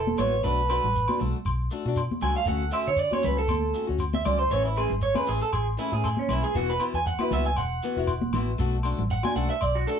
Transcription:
Already playing: E1 A4
0.07 high conga
0.18 A1 E3 B3 E4 F#4 C#5, low conga, low agogo, shekere
0.43 B1 A3 D4 F#4 B4, shekere
0.68 A3 D4 F#4 B4, low agogo, shekere
0.84 A1, low conga
0.95 shekere
1.08 D4 F#4, high conga, low agogo
1.19 B1 A3 D4 F#4, low conga, shekere
1.45 B1, low agogo, shekere
1.70 A3 D4 F#4, shekere
1.85 B2 D4 F#4
1.96 low agogo, shekere
2.11 high conga
2.21 C#2 A3 D4 F#4 G#5, low conga, low agogo, shekere
2.36 F5
2.46 D2 A3 C#4 F#4 F#5, shekere
2.71 A3 C#4 F#4 E5, low agogo, shekere
2.87 D3 C#5
2.96 D5, shekere
3.11 C#4 F#4 C#5, high conga, low agogo
3.23 C#2 A3 C#4 F#4 B4, low conga, shekere
3.38 A4
3.48 D2, high conga, low agogo, shekere
3.73 A3 C#4 F#4, shekere
3.87 D2 C#4 F#4
3.99 low agogo, shekere
4.14 E5, high conga
4.25 C#2 A3 C#4 F#4 D5, low conga, low agogo, shekere
4.39 C5
4.50 A1 E3 A3 C#4 C#5, muted steel-string acoustic guitar stroke, shekere
4.65 E4
4.76 E3 A3 C#4 G#4, low agogo, shekere
4.90 G#1, low conga
5.01 C#5, shekere
5.14 A3 C#4 G#4 B4, high conga, low agogo
5.26 A1 E3 A3 C#4 G#4, shekere
5.42 A4
5.53 A1 G#4, low agogo, shekere
5.77 E3 A3 C#4 E4 G#4, shekere
5.92 A2 A3 C#4 G#4
6.04 G#4, low agogo, shekere
6.17 C#4, high conga
6.29 B1 E3 A3 C#4 E4 G#4, low conga, low agogo, shekere
6.44 G#4
6.55 E1 E3 B3 E4 F#4, shekere
6.69 B4
6.79 E3 B3 E4 F#4, low agogo, shekere
6.94 E2 G#5
7.06 F#5, shekere
7.19 E4 F#4 B4, high conga, low agogo
7.31 C#2 E3 B3 E4 F#4 E5, low conga, shekere
7.46 G#5
7.56 E1 F#5, low agogo, shekere
7.82 E3 B3 E4 F#4, shekere
7.96 E1 B3 E4 F#4
8.07 low agogo, shekere
8.21 high conga
8.33 A1 E3 B3 E4 F#4, low conga, low agogo, shekere
8.58 B1 A3 D4 F#4, shekere
8.83 A3 D4 F#4, low agogo, shekere
8.98 A1, low conga
9.10 F#5, shekere
9.23 D4 F#4 G#5, high conga, low agogo
9.36 B1 A3 D4 F#4 F#5, shekere
9.50 E5
9.61 B1 D5, low agogo, shekere
9.75 F#4
9.87 A3 D4 F#4 A4, shekere

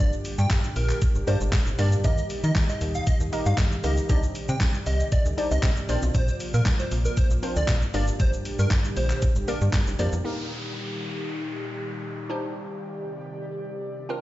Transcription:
Already playing: A#2 D3 G3 A#3 D4 G4 A#4 D5
0.00 G1 D5
0.13 shaker
0.25 open hi-hat, shaker
0.38 G2 G5, shaker
0.50 kick, snare, clap, closed hi-hat, tambourine, shaker
0.64 shaker
0.76 A#1 A#4, open hi-hat, shaker
0.90 clap, shaker
1.02 kick, closed hi-hat, shaker
1.15 G1, shaker
1.27 G2 A#3 D4 G4 A#4 C5 D5, open hi-hat, shaker
1.41 G1, shaker
1.52 kick, snare, clap, closed hi-hat, tambourine, shaker
1.67 G1, shaker
1.78 G2 A#3 D4 G4 A#4 D5, open hi-hat, shaker
1.92 shaker
2.04 D#2 D#3 A#3 D#4 G4 A#4 D#5, kick, closed hi-hat, shaker
2.18 shaker
2.30 open hi-hat, shaker
2.44 D#3 D#5, shaker
2.55 kick, snare, clap, closed hi-hat, tambourine, shaker
2.69 D#5, shaker
2.81 D#2, open hi-hat, shaker
2.95 F5, shaker
3.07 D#5, kick, closed hi-hat, shaker
3.20 D#2, shaker
3.32 A#3 D#4 G4 A#4 D#5, open hi-hat, shaker
3.46 G2 F5, shaker
3.57 D#2, kick, snare, clap, closed hi-hat, tambourine, shaker
3.72 shaker
3.84 C#2 A#3 D#4 G4 A#4 D#5, open hi-hat, shaker
3.97 shaker
4.09 C2 C3 D4 D#4 G4 C5 D5 D#5, kick, closed hi-hat, shaker
4.23 shaker
4.35 open hi-hat, shaker
4.49 C3 G5, shaker
4.60 kick, snare, clap, closed hi-hat, tambourine, shaker
4.74 shaker
4.86 C2 D#5, open hi-hat, shaker
5.00 shaker
5.12 D5, kick, closed hi-hat, shaker
5.26 D2, shaker
5.38 D4 D#4 G4 C5 D5, open hi-hat, shaker
5.51 C2 D#5, shaker
5.62 C3 D#5, kick, snare, clap, closed hi-hat, tambourine, shaker
5.77 shaker
5.89 A#1 F3 A#3 C4 D4 F4 A#4 C5 D5, open hi-hat, shaker
6.03 B1, shaker
6.15 A#1 C5, kick, closed hi-hat, shaker
6.28 shaker
6.40 open hi-hat, shaker
6.54 A#2 A#4, shaker
6.65 kick, snare, clap, closed hi-hat, tambourine, shaker
6.80 C5, shaker
6.91 A#1, open hi-hat, shaker
7.05 A#4, shaker
7.17 C5, kick, closed hi-hat, shaker
7.31 A#1, shaker
7.43 C4 D4 F4 A#4 C5, open hi-hat, shaker
7.56 D2 D5, shaker
7.67 A#1, kick, snare, clap, closed hi-hat, tambourine, shaker
7.82 shaker
7.94 G1 A#2 D3 G3 A#3 D4 G4 A#4 D5, open hi-hat, shaker
8.08 shaker
8.20 G1 C5, kick, closed hi-hat, shaker
8.33 shaker
8.45 open hi-hat, shaker
8.59 G2 A#4, shaker
8.70 kick, snare, clap, closed hi-hat, tambourine, shaker
8.85 shaker
8.97 A#1 C5, open hi-hat, shaker
9.10 clap, shaker
9.22 kick, closed hi-hat, shaker
9.36 G1, shaker
9.48 A#3 D4 G4 A#4 D5, open hi-hat, shaker
9.61 G2, shaker
9.72 kick, snare, clap, closed hi-hat, tambourine, shaker
9.87 G1, shaker
9.99 F2 A#3 D4 G4 A#4 C5 D5, open hi-hat, shaker
10.13 E2, shaker
10.24 A#2 D#3 G3 A#3 D#4 G4 A#4, downlifter
12.30 C3 D#3 D4 D#4 G4 C5 D5
14.09 F3 A#3 C4 D4 F4 A#4

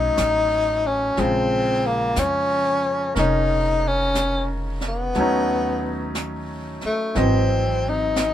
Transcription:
Already playing: B1 F#3 A3 C#4 D#4
0.17 A1, brush sweep, snare, hi-hat pedal
0.86 C#4
1.17 A#1 C#3 F3 G#3 C4, brush sweep, snare
1.86 A#3
2.16 F2 C#4, brush sweep, snare, hi-hat pedal
3.15 F1 C#4 D#4 A#4, brush sweep, snare
3.19 D#4
3.87 C#4
4.15 brush sweep, snare, hi-hat pedal
4.81 snare
4.88 B3
5.14 D#2 F#3 A3 C#4, brush sweep, snare
5.20 D#4
6.15 brush sweep, snare, hi-hat pedal
6.81 muted upright bass stroke, snare
6.86 A3
7.15 G#1 E3 F#3 C4 D#5, brush sweep, snare
7.89 D#4
8.16 brush sweep, snare, hi-hat pedal

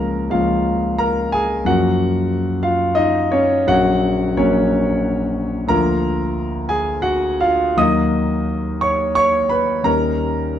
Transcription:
Already playing: C#2 F3 A#3 C#4 A#4 A#5
0.30 C#2 F3 A#3 C#4 F4 F5
0.98 A#4 A#5
1.32 G#4 G#5
1.65 F#2 F3 A#3 C#4 F#4 F#5
2.63 F4 F5
2.95 D#4 D#5
3.32 C#4 C#5
3.67 A#1 F#3 A#3 C#4 F#4 F#5
4.37 A#1 F#3 A#3 C#4 C#5
5.67 D2 F3 A#3 F4 A#4 A#5
6.69 G#4 G#5
7.02 F#4 F#5
7.41 F4 F5
7.76 D#2 F#3 A#3 D#4 D#5 D#6
8.81 C#5 C#6
9.15 C#5 C#6
9.49 B4 B5
9.83 D#2 G3 C#4 D#4 A#4 A#5

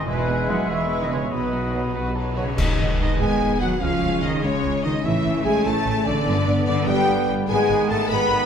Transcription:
Already playing: G#4 G#5
0.06 E1 E2 B2 G#3 E4 B4 E5 G#5
0.18 E4
0.27 B3 G#4
0.47 B2 F#3 G#3 B3 E4 B4 E5 F#5
0.59 G#5
0.67 E1 E3 B3 G#4 E5 B5 C#6
0.81 G#5
0.88 G#3 E4 B4
1.00 D#3 G#4 D#5
1.10 B2 C#3 G#3 B3 E4 G#4 C#5
1.22 B2
1.31 B1 B2 F#3 B3 D#4 B4 D#5 B5
1.43 D#4
1.52 B3 F#4
1.65 B4
1.72 B2 F#3 B3 D#4 B4 D#5
1.85 F#5
1.94 B1 B3 F#4 B4 B5
2.06 F#5
2.14 F#3 D#4 B4 A5
2.28 F#4
2.36 B2 C#3 F#3 B3 C#4 D#4 F#4 B4 C#5
2.48 F#3
2.57 G#1 G#2 D#3 B3 D#4 D#5, concert bass drum, crash
2.78 G#1 D#3
2.99 G#1 D#3 D#4 G#4 D#5
3.19 G#1 G#3 B3 G#4 D#5 G#5
3.40 G#1
3.61 G#1 F#3 F#4 G#4 F#5
3.80 C#2 C#3 F3 G#3 C#4 F4 F5
4.02 C#2 G#3
4.22 C#2 D#3 D#4 G#4 D#5
4.42 C#2 C#3 G#3 C#4 C#5
4.63 C#2 G#4
4.84 C#2 D#3 C#4 D#4 D#5
5.03 A1 A2 E3 A3 E4 E5
5.24 A1 E3
5.43 A1 G#3 G#4 A4 G#5
5.65 A1 A3 A4 C#5 A5
5.86 A1
6.06 A1 D3 C#4 D4 D5
6.26 G1 G2 D3 B3
6.48 G1 D3
6.67 G1 D3 D4 B4 D5
6.87 G1 G3 G4 D5 G5
7.08 G1 B4
7.28 G1 B3
7.47 G#1 G#2 D#3 G#3 B3 G#4 G#5
7.69 G#1 D#3
7.88 G#1 A3 A4 A5
8.09 G#1 D#3 B3 B4 D#5 B5
8.30 G#1

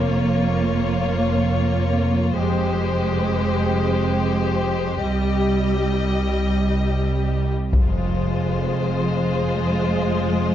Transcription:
Already playing: F1 F2 A#3 F4 C#5
2.39 F1 F2 G#3 G4 C5
5.06 C2 G3 D#5
7.73 F1 F2 G#3 F4 C5, taiko, impact

